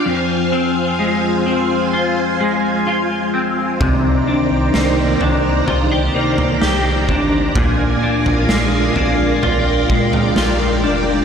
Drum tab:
SD |----------------|----o-------o---|----o-------o---|
FT |----------------|o-----o-o--o--o-|o--o--o-o--o----|
BD |----------------|o-------------o-|o---------o-----|